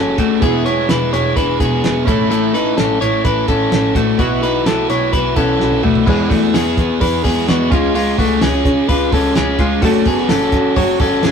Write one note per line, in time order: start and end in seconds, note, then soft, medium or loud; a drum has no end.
0.00 0.14 F#1 loud
0.00 0.16 A3 medium
0.00 0.38 A3 medium
0.00 0.16 C#4 medium
0.00 0.17 C#4 medium
0.00 0.17 F#4 medium
0.00 0.39 F#4 medium
0.00 0.18 G#4 medium
0.00 0.40 G#4 medium
0.00 0.16 A4 medium
0.17 0.38 F#1 medium
0.17 0.42 A3 medium
0.17 0.43 A3 medium
0.17 0.42 C#4 medium
0.17 0.42 F#4 medium
0.17 0.42 G#4 medium
0.17 kick medium
0.17 closed hi-hat medium
0.40 0.81 E1 medium
0.40 0.66 E3 medium
0.40 0.64 G#3 medium
0.40 2.03 B3 medium
0.40 0.65 B3 medium
0.40 0.66 B3 medium
0.40 2.04 E4 medium
0.40 0.65 E4 medium
0.40 0.65 G#4 loud
0.40 0.66 G#4 loud
0.40 kick loud
0.40 closed hi-hat medium
0.44 2.05 G#4 medium
0.65 1.11 G#3 medium
0.65 1.12 B3 medium
0.65 0.90 E4 medium
0.65 1.13 E4 medium
0.65 1.13 G#4 medium
0.65 0.89 C#5 medium
0.65 closed hi-hat medium
0.89 1.08 E1 loud
0.89 1.12 E4 medium
0.89 1.12 B4 medium
0.89 snare loud
0.89 closed hi-hat medium
1.12 1.32 E1 medium
1.12 1.58 G#3 medium
1.12 1.59 B3 medium
1.12 1.60 E4 medium
1.12 1.36 E4 medium
1.12 1.60 G#4 medium
1.12 1.36 C#5 medium
1.12 closed hi-hat medium
1.36 1.56 E1 medium
1.36 1.60 E4 medium
1.36 1.60 B4 medium
1.36 kick medium
1.36 closed hi-hat medium
1.59 1.80 E1 medium
1.59 1.82 G#3 medium
1.59 1.83 B3 medium
1.59 2.05 B3 medium
1.59 1.84 E4 medium
1.59 2.04 G#4 medium
1.59 1.84 G#4 medium
1.59 kick medium
1.59 closed hi-hat medium
1.83 2.03 E1 loud
1.83 2.06 G#3 medium
1.83 2.07 B3 medium
1.83 2.06 E4 medium
1.83 2.08 G#4 medium
1.83 snare loud
1.83 closed hi-hat medium
2.05 2.65 A1 medium
2.05 2.29 A3 medium
2.05 2.30 A3 medium
2.05 3.91 C#4 medium
2.05 2.29 C#4 medium
2.05 3.92 E4 medium
2.05 2.29 E4 medium
2.05 2.30 E4 medium
2.05 2.29 A4 medium
2.05 3.93 A4 medium
2.05 kick loud
2.05 closed hi-hat medium
2.29 2.54 A2 medium
2.29 2.54 E3 medium
2.29 2.52 A3 medium
2.29 2.54 A3 medium
2.29 2.52 C#4 medium
2.29 2.54 E4 medium
2.29 2.53 E4 medium
2.29 2.53 A4 loud
2.29 closed hi-hat medium
2.53 2.99 A3 medium
2.53 2.99 C#4 medium
2.53 2.78 D#4 medium
2.53 3.00 E4 medium
2.53 3.00 A4 medium
2.53 2.77 B4 medium
2.53 closed hi-hat medium
2.77 2.97 A1 medium
2.77 3.01 C#4 medium
2.77 3.01 A4 medium
2.77 snare loud
2.77 closed hi-hat medium
3.00 3.20 A1 medium
3.00 3.46 A3 medium
3.00 3.47 C#4 medium
3.00 3.48 E4 medium
3.00 3.24 E4 medium
3.00 3.47 A4 medium
3.00 3.24 C#5 medium
3.00 closed hi-hat medium
3.25 3.44 A1 medium
3.25 3.49 E4 medium
3.25 3.48 B4 medium
3.25 kick medium
3.25 closed hi-hat medium
3.47 3.68 A1 medium
3.47 3.68 A3 medium
3.47 3.69 C#4 medium
3.47 3.93 C#4 medium
3.47 3.70 E4 medium
3.47 3.93 A4 medium
3.47 3.71 A4 medium
3.47 kick medium
3.47 closed hi-hat medium
3.70 3.91 A1 loud
3.70 3.92 A3 medium
3.70 3.93 C#4 medium
3.70 3.94 E4 medium
3.70 3.94 A4 medium
3.70 snare loud
3.70 closed hi-hat medium
3.94 4.15 A1 medium
3.94 4.18 A3 medium
3.94 4.20 A3 medium
3.94 4.18 C#4 medium
3.94 4.18 E4 medium
3.94 4.18 F#4 medium
3.94 4.19 A4 medium
3.94 kick medium
3.94 closed hi-hat medium
4.18 4.58 B1 loud
4.18 4.42 B2 medium
4.18 4.42 E3 medium
4.18 4.40 F#3 medium
4.18 5.34 B3 medium
4.18 4.41 B3 medium
4.18 4.43 B3 medium
4.18 4.42 E4 medium
4.18 5.35 E4 medium
4.18 4.42 F#4 medium
4.18 5.35 F#4 medium
4.18 4.42 B4 medium
4.18 kick loud
4.18 closed hi-hat medium
4.41 4.87 F#3 medium
4.41 4.89 B3 medium
4.41 4.66 D#4 medium
4.41 4.90 E4 medium
4.41 4.66 B4 medium
4.41 4.90 B4 medium
4.41 closed hi-hat medium
4.65 4.85 B1 medium
4.65 4.89 E4 medium
4.65 4.89 A4 medium
4.65 snare loud
4.65 closed hi-hat loud
4.89 5.09 B1 medium
4.89 5.34 F#3 medium
4.89 5.36 B3 medium
4.89 5.36 E4 medium
4.89 5.12 E4 medium
4.89 5.37 B4 medium
4.89 5.12 C#5 medium
4.89 closed hi-hat medium
5.13 5.32 B1 loud
5.13 5.37 E4 medium
5.13 5.36 B4 medium
5.13 kick medium
5.13 closed hi-hat medium
5.35 5.56 B1 medium
5.35 5.58 F#3 medium
5.35 6.05 B3 medium
5.35 5.58 B3 medium
5.35 5.81 C#4 medium
5.35 6.07 E4 medium
5.35 5.59 E4 medium
5.35 6.08 F#4 medium
5.35 5.81 A4 medium
5.35 5.60 B4 medium
5.35 kick medium
5.35 closed hi-hat medium
5.59 5.79 B1 loud
5.59 5.81 F#3 medium
5.59 5.82 B3 medium
5.59 5.83 E4 medium
5.59 5.83 B4 medium
5.59 snare medium
5.72 high tom medium
5.82 6.03 B1 medium
5.82 6.06 F#3 medium
5.82 6.07 A3 medium
5.82 6.06 B3 medium
5.82 6.06 E4 medium
5.82 6.07 F#4 medium
5.82 6.07 B4 medium
5.82 mid tom medium
5.95 floor tom medium
6.06 6.27 E2 loud
6.06 6.42 E3 medium
6.06 6.42 G#3 loud
6.06 6.30 G#3 medium
6.06 7.68 B3 medium
6.06 6.43 B3 loud
6.06 6.30 E4 medium
6.06 6.42 E4 loud
6.06 7.69 E4 medium
6.06 6.41 G#4 medium
6.06 7.69 G#4 medium
6.06 kick loud
6.06 crash medium
6.30 6.50 E2 loud
6.30 6.54 A3 medium
6.30 6.54 F#4 medium
6.30 kick medium
6.30 hi-hat pedal medium
6.30 open hi-hat medium
6.42 6.66 B3 soft
6.42 6.65 E4 medium
6.42 6.64 G#4 medium
6.54 6.74 E2 medium
6.54 6.99 B3 medium
6.54 6.98 G#4 medium
6.54 snare loud
6.54 hi-hat pedal medium
6.54 open hi-hat medium
6.65 7.24 B3 soft
6.65 7.24 E4 soft
6.65 7.26 G#4 medium
6.77 6.97 E3 medium
6.77 kick medium
6.77 hi-hat pedal medium
6.77 open hi-hat medium
7.01 7.20 E2 loud
7.01 7.24 E4 medium
7.01 7.24 B4 medium
7.01 kick medium
7.01 hi-hat pedal medium
7.01 open hi-hat medium
7.24 7.44 E2 loud
7.24 7.47 G#3 medium
7.24 7.48 B3 medium
7.24 7.49 E4 medium
7.24 7.48 G#4 medium
7.24 7.49 G#4 medium
7.24 kick medium
7.24 hi-hat pedal medium
7.24 open hi-hat medium
7.48 7.67 E2 loud
7.48 7.70 G#3 medium
7.48 7.72 B3 medium
7.48 7.72 E4 medium
7.48 7.71 F#4 medium
7.48 7.72 G#4 medium
7.48 snare loud
7.48 hi-hat pedal medium
7.48 open hi-hat medium
7.70 8.10 C#2 medium
7.70 7.93 G#3 medium
7.70 7.95 G#3 medium
7.70 9.55 C#4 medium
7.70 7.93 C#4 medium
7.70 7.94 F4 medium
7.70 9.56 F4 medium
7.70 7.94 F4 medium
7.70 7.94 G#4 medium
7.70 9.57 G#4 medium
7.70 kick loud
7.70 hi-hat pedal medium
7.70 open hi-hat medium
7.94 8.30 C#3 medium
7.94 8.30 G#3 medium
7.94 8.19 G#3 medium
7.94 8.29 C#4 medium
7.94 8.18 F4 medium
7.94 8.28 F4 medium
7.94 8.27 G#4 loud
7.94 hi-hat pedal medium
7.94 open hi-hat medium
8.18 8.38 C#2 medium
8.18 8.43 A3 medium
8.18 8.42 F#4 medium
8.18 kick medium
8.18 hi-hat pedal medium
8.18 open hi-hat medium
8.28 8.54 C#4 soft
8.28 8.53 F4 medium
8.28 8.52 G#4 medium
8.41 8.61 C#2 loud
8.41 8.87 C#4 medium
8.41 8.86 G#4 medium
8.41 snare loud
8.41 hi-hat pedal medium
8.41 open hi-hat medium
8.53 9.12 C#4 soft
8.53 9.12 F4 medium
8.53 9.12 G#4 medium
8.65 8.84 C#3 loud
8.65 kick medium
8.65 hi-hat pedal medium
8.65 open hi-hat medium
8.89 9.08 C#2 loud
8.89 9.13 F4 medium
8.89 9.12 B4 medium
8.89 kick medium
8.89 hi-hat pedal medium
8.89 open hi-hat medium
9.12 9.32 C#2 loud
9.12 9.34 G#3 medium
9.12 9.34 C#4 medium
9.12 9.36 C#4 medium
9.12 9.35 F4 medium
9.12 9.36 G#4 medium
9.12 9.36 A4 medium
9.12 kick medium
9.12 hi-hat pedal medium
9.12 open hi-hat medium
9.35 9.55 C#2 loud
9.35 9.57 G#3 medium
9.35 9.57 C#4 medium
9.35 9.60 C#4 medium
9.35 9.58 F4 medium
9.35 9.59 G#4 medium
9.35 snare loud
9.35 hi-hat pedal medium
9.35 open hi-hat medium
9.58 9.78 C#2 medium
9.58 9.81 G#3 medium
9.58 9.83 G#3 medium
9.58 9.80 C#4 medium
9.58 9.81 C#4 medium
9.58 9.83 F4 soft
9.58 9.82 F4 medium
9.58 9.83 G#4 medium
9.58 kick medium
9.58 hi-hat pedal medium
9.58 open hi-hat medium
9.81 10.02 F#1 loud
9.81 10.17 F#3 medium
9.81 10.06 A3 medium
9.81 11.31 C#4 medium
9.81 10.18 C#4 medium
9.81 10.18 F#4 medium
9.81 10.06 F#4 medium
9.81 11.31 F#4 medium
9.81 10.16 A4 medium
9.81 11.31 A4 medium
9.81 kick loud
9.81 hi-hat pedal medium
9.81 open hi-hat medium
10.05 10.25 F#1 medium
10.05 10.30 B3 medium
10.05 10.29 G#4 medium
10.05 kick medium
10.05 hi-hat pedal medium
10.05 open hi-hat medium
10.17 10.42 C#4 soft
10.17 10.41 F#4 medium
10.17 10.40 A4 medium
10.29 10.49 F#1 loud
10.29 10.74 C#4 medium
10.29 10.74 A4 medium
10.29 snare loud
10.29 hi-hat pedal medium
10.29 open hi-hat loud
10.41 10.99 C#4 soft
10.41 11.00 F#4 medium
10.41 11.01 A4 medium
10.52 10.72 F#2 medium
10.52 kick medium
10.52 hi-hat pedal medium
10.52 open hi-hat medium
10.76 10.96 F#1 loud
10.76 11.00 F#4 medium
10.76 11.00 C#5 medium
10.76 kick medium
10.76 hi-hat pedal medium
10.76 open hi-hat medium
10.99 11.19 F#1 loud
10.99 11.21 F#3 medium
10.99 11.22 C#4 medium
10.99 11.24 C#4 medium
10.99 11.23 F#4 medium
10.99 11.24 A4 medium
10.99 11.23 A4 medium
10.99 kick loud
10.99 hi-hat pedal medium
10.99 open hi-hat medium
11.23 11.31 F#1 loud
11.23 11.31 F#3 medium
11.23 11.31 C#4 medium
11.23 11.31 F#4 medium
11.23 11.31 G#4 medium
11.23 11.31 A4 medium
11.23 snare loud
11.23 hi-hat pedal medium
11.23 open hi-hat medium